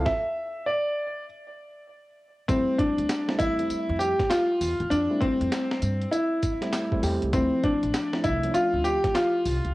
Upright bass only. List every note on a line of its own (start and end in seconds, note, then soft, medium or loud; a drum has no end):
2.49 2.63 F2 loud
2.98 3.07 D2 medium
3.40 3.62 E2 medium
3.70 muted upright bass stroke soft
3.89 4.12 F2 loud
4.61 4.75 E2 medium
4.80 4.88 E2 medium
4.91 5.05 F2 loud
5.41 5.49 F2 medium
5.82 6.04 G2 loud
7.03 7.17 E2 loud
7.22 7.31 C#2 medium
7.33 7.48 D2 loud
7.83 7.91 A1 medium
8.25 8.47 C2 medium
8.55 muted upright bass stroke soft
8.74 8.96 D2 medium
9.45 9.60 C2 medium
9.65 9.73 C#2 medium